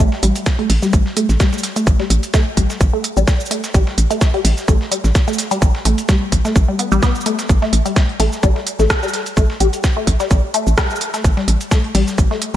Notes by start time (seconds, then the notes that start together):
0.12 snare
0.23 A1 G3, open hi-hat, shaker
0.36 closed hi-hat, open hi-hat, shaker
0.46 kick, snare, shaker
0.59 A3, closed hi-hat
0.70 A1, open hi-hat
0.82 G3, snare, shaker
0.93 A1, kick, shaker
1.06 snare
1.17 A3, open hi-hat, shaker
1.29 A1, snare, shaker
1.40 G3, kick, snare, shaker
1.53 snare, shaker
1.58 shaker
1.63 snare, open hi-hat, shaker
1.76 A3, closed hi-hat, open hi-hat, shaker
1.87 A1, kick, shaker
2.00 G3, snare
2.10 A1, open hi-hat, shaker
2.23 closed hi-hat, open hi-hat, shaker
2.34 A3, kick, snare, shaker
2.57 A1 G3, kick, open hi-hat, shaker
2.70 snare, shaker
2.81 A1, kick, shaker
2.93 A3
3.04 open hi-hat, shaker
3.17 A1 G3, shaker
3.28 kick, snare, shaker
3.40 shaker
3.46 shaker
3.51 A3, open hi-hat, shaker
3.64 snare, open hi-hat, shaker
3.74 A1 G3, kick, shaker
3.87 snare
3.98 A1, open hi-hat, shaker
4.11 A3, closed hi-hat, open hi-hat, shaker
4.21 kick, snare, shaker
4.34 G3, closed hi-hat
4.45 A1, open hi-hat
4.57 snare, shaker
4.68 A1 A3, kick, shaker
4.81 snare
4.92 G3, open hi-hat, shaker
5.04 A1, snare, shaker
5.15 kick, snare, shaker
5.28 A3, snare, shaker
5.33 shaker
5.38 snare, open hi-hat, shaker
5.51 G3, closed hi-hat, open hi-hat, shaker
5.62 A1, kick, shaker
5.75 snare
5.85 A1 A3, open hi-hat, shaker
5.98 closed hi-hat, open hi-hat, shaker
6.09 G3, kick, snare, shaker
6.32 A1, kick, open hi-hat, shaker
6.45 A3, snare, shaker
6.56 A1, kick, shaker
6.68 G3
6.79 B3, open hi-hat, shaker
6.92 A1 G3, shaker
7.03 B3, kick, snare, shaker
7.15 shaker
7.21 shaker
7.26 A3, open hi-hat, shaker
7.39 snare, open hi-hat, shaker
7.49 A1, kick, shaker
7.62 A3, snare
7.73 A1, open hi-hat, shaker
7.86 G3, closed hi-hat, open hi-hat, shaker
7.96 kick, snare, shaker
8.09 closed hi-hat
8.20 A1 A3, open hi-hat
8.32 snare, shaker
8.43 A1 G3, kick, shaker
8.56 snare
8.67 open hi-hat, shaker
8.79 A1 A3, snare, shaker
8.90 kick, cross-stick, snare, shaker
9.03 G3, snare, shaker
9.08 shaker
9.14 snare, open hi-hat, shaker
9.26 closed hi-hat, open hi-hat, shaker
9.37 A1 A3, kick, shaker
9.50 snare
9.60 A1 G3, open hi-hat, shaker
9.73 closed hi-hat, open hi-hat, shaker
9.84 kick, snare, shaker
9.97 A3
10.07 A1, kick, open hi-hat, shaker
10.20 G3, snare, shaker
10.31 A1, kick, shaker
10.54 A3, open hi-hat, shaker
10.67 A1, shaker
10.78 G3, kick, cross-stick, snare, shaker
10.90 shaker
10.96 shaker
11.01 open hi-hat, shaker
11.14 A3, snare, open hi-hat, shaker
11.24 A1, kick, shaker
11.37 G3, snare
11.48 A1, open hi-hat, shaker
11.61 closed hi-hat, open hi-hat, shaker
11.71 A3, kick, snare, shaker
11.84 closed hi-hat
11.95 A1 G3, open hi-hat
12.08 snare, shaker
12.18 A1, kick, shaker
12.31 A3, snare
12.42 open hi-hat, shaker